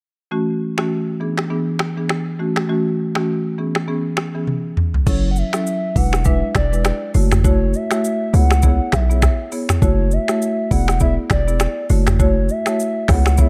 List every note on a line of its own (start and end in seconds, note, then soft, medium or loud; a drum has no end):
0.31 0.74 E3 medium
0.31 0.74 A3 medium
0.31 0.74 C#4 medium
0.31 0.74 F#4 loud
0.78 1.17 E3 medium
0.78 1.18 A3 medium
0.78 1.18 C#4 medium
0.78 1.18 F#4 medium
0.78 finger snap medium
0.78 cross-stick medium
1.20 1.48 E3 medium
1.20 1.48 B3 medium
1.20 1.48 D4 medium
1.20 1.48 G#4 medium
1.38 finger snap medium
1.38 cross-stick medium
1.50 1.68 E3 medium
1.50 1.68 B3 medium
1.50 1.68 D4 medium
1.50 1.68 G#4 loud
1.79 finger snap medium
1.79 cross-stick medium
1.97 2.36 E3 medium
1.97 2.36 B3 medium
1.97 2.37 D4 medium
1.97 2.37 G#4 medium
2.09 finger snap medium
2.09 cross-stick medium
2.39 2.67 E3 medium
2.39 2.67 A3 medium
2.39 2.67 C#4 medium
2.39 2.67 F#4 medium
2.56 finger snap medium
2.56 cross-stick medium
2.69 3.12 E3 medium
2.69 3.12 A3 medium
2.69 3.12 C#4 medium
2.69 3.12 F#4 loud
3.15 3.55 E3 medium
3.15 3.55 A3 medium
3.15 3.55 C#4 medium
3.15 3.55 F#4 medium
3.15 finger snap medium
3.15 cross-stick medium
3.58 3.86 E3 medium
3.58 3.86 B3 medium
3.58 3.86 C#4 medium
3.58 3.86 G#4 medium
3.75 finger snap medium
3.75 cross-stick medium
3.88 4.05 E3 medium
3.88 4.06 B3 medium
3.88 4.06 C#4 medium
3.88 4.06 G#4 loud
4.17 finger snap medium
4.17 cross-stick medium
4.35 4.48 E3 medium
4.35 4.48 B3 medium
4.35 4.48 C#4 medium
4.35 4.48 G#4 medium
4.47 high tom medium
4.77 mid tom medium
4.94 floor tom medium
5.06 5.43 F#1 loud
5.06 5.49 F#3 medium
5.06 5.50 C#4 medium
5.06 5.50 E4 medium
5.06 5.50 A4 loud
5.06 5.29 C#5 medium
5.06 kick loud
5.06 crash loud
5.06 shaker medium
5.31 5.39 F#5 medium
5.36 5.98 E5 loud
5.36 shaker medium
5.53 5.93 F#3 medium
5.53 5.93 C#4 medium
5.53 5.93 E4 medium
5.53 5.93 A4 medium
5.53 finger snap medium
5.53 cross-stick medium
5.53 shaker medium
5.67 shaker medium
5.96 6.42 E1 loud
5.96 6.23 G#3 medium
5.96 6.24 D4 medium
5.96 6.24 E4 medium
5.96 6.24 B4 medium
5.96 6.26 F#5 loud
5.96 kick medium
5.96 open hi-hat medium
5.96 shaker medium
6.13 finger snap medium
6.13 cross-stick medium
6.13 shaker medium
6.25 6.68 G#3 loud
6.25 6.68 D4 medium
6.25 6.68 E4 medium
6.25 6.69 B4 loud
6.25 6.54 E5 loud
6.25 kick medium
6.25 shaker medium
6.55 6.92 E1 loud
6.55 7.11 D5 medium
6.55 finger snap medium
6.55 kick medium
6.55 cross-stick loud
6.55 shaker medium
6.72 6.86 G#3 medium
6.72 6.86 D4 medium
6.72 6.86 E4 medium
6.72 6.86 B4 medium
6.72 shaker medium
6.85 finger snap medium
6.85 cross-stick loud
6.85 shaker medium
7.14 7.75 F#1 loud
7.14 7.32 A3 medium
7.14 7.32 E4 medium
7.14 7.32 F#4 medium
7.14 7.33 C#5 medium
7.14 open hi-hat medium
7.14 shaker medium
7.32 finger snap medium
7.32 cross-stick medium
7.32 mid tom medium
7.32 shaker medium
7.44 7.62 A3 medium
7.44 7.62 E4 medium
7.44 7.62 F#4 medium
7.44 7.62 C#5 loud
7.44 7.77 C#5 medium
7.44 kick loud
7.44 shaker medium
7.74 8.36 E5 loud
7.74 shaker medium
7.91 8.04 A3 medium
7.91 8.04 E4 medium
7.91 8.05 F#4 medium
7.91 8.05 C#5 medium
7.91 finger snap medium
7.91 cross-stick medium
7.91 shaker medium
8.04 shaker medium
8.33 8.80 C#2 loud
8.33 8.51 B3 medium
8.33 8.51 E4 medium
8.33 8.51 G#4 medium
8.33 8.51 C#5 medium
8.33 8.95 F#5 loud
8.33 open hi-hat medium
8.33 shaker soft
8.51 finger snap medium
8.51 cross-stick medium
8.51 shaker medium
8.62 9.06 B3 loud
8.62 9.06 E4 medium
8.62 9.06 G#4 medium
8.62 9.06 C#5 loud
8.62 kick medium
8.62 shaker medium
8.92 9.30 B1 medium
8.92 9.53 E5 loud
8.92 finger snap medium
8.92 kick medium
8.92 cross-stick loud
8.92 shaker medium
9.10 9.23 B3 medium
9.10 9.23 E4 medium
9.10 9.23 G#4 medium
9.10 9.23 C#5 medium
9.10 shaker medium
9.22 finger snap medium
9.22 kick loud
9.22 cross-stick loud
9.22 shaker medium
9.52 9.70 B3 medium
9.52 9.70 E4 medium
9.52 9.70 G#4 medium
9.52 9.70 C#5 medium
9.52 open hi-hat medium
9.52 shaker medium
9.69 finger snap medium
9.69 cross-stick medium
9.69 mid tom medium
9.69 shaker medium
9.82 10.19 F#1 loud
9.82 10.25 A3 medium
9.82 10.25 E4 medium
9.82 10.25 F#4 medium
9.82 10.25 C#5 loud
9.82 10.14 C#5 medium
9.82 kick loud
9.82 shaker medium
10.11 10.71 E5 loud
10.11 shaker medium
10.28 10.68 A3 medium
10.28 10.68 E4 medium
10.28 10.68 F#4 medium
10.28 10.68 C#5 medium
10.28 finger snap medium
10.28 cross-stick medium
10.28 shaker medium
10.42 shaker medium
10.71 11.18 E1 loud
10.71 10.99 B3 medium
10.71 10.99 E4 medium
10.71 10.99 G#4 medium
10.71 10.99 D5 medium
10.71 10.99 F#5 loud
10.71 kick medium
10.71 open hi-hat medium
10.71 shaker medium
10.88 finger snap medium
10.88 cross-stick medium
10.88 shaker medium
11.00 11.44 B3 loud
11.00 11.44 E4 medium
11.00 11.44 G#4 medium
11.00 11.44 D5 loud
11.00 11.15 E5 loud
11.00 kick medium
11.00 shaker medium
11.30 11.67 E1 loud
11.30 11.86 D5 medium
11.30 finger snap medium
11.30 kick medium
11.30 cross-stick loud
11.30 shaker medium
11.47 11.61 B3 medium
11.47 11.61 E4 medium
11.47 11.61 G#4 medium
11.47 11.61 D5 medium
11.47 shaker medium
11.60 finger snap medium
11.60 cross-stick loud
11.60 shaker medium
11.90 12.50 F#1 loud
11.90 12.08 A3 medium
11.90 12.08 E4 medium
11.90 12.08 F#4 medium
11.90 12.08 C#5 medium
11.90 open hi-hat medium
11.90 shaker medium
12.07 finger snap medium
12.07 cross-stick medium
12.07 mid tom medium
12.07 shaker medium
12.19 12.37 A3 medium
12.19 12.37 E4 medium
12.19 12.37 F#4 medium
12.19 12.38 C#5 loud
12.19 12.52 C#5 loud
12.19 kick loud
12.19 shaker medium
12.49 13.11 E5 loud
12.49 shaker medium
12.66 12.80 A3 medium
12.66 12.80 E4 medium
12.66 12.80 F#4 medium
12.66 12.80 C#5 medium
12.66 finger snap medium
12.66 cross-stick medium
12.66 shaker medium
12.80 shaker medium
13.08 13.49 C#2 loud
13.08 13.26 B3 medium
13.08 13.26 E4 medium
13.08 13.27 G#4 medium
13.08 13.27 C#5 medium
13.08 13.41 F#5 loud
13.08 finger snap medium
13.08 kick medium
13.08 cross-stick medium
13.08 open hi-hat medium
13.08 shaker medium
13.26 finger snap medium
13.26 cross-stick medium
13.26 shaker medium
13.37 13.49 B3 medium
13.37 13.49 E4 medium
13.37 13.49 G#4 medium
13.37 13.49 C#5 loud
13.37 13.49 E5 loud
13.37 kick medium
13.37 shaker medium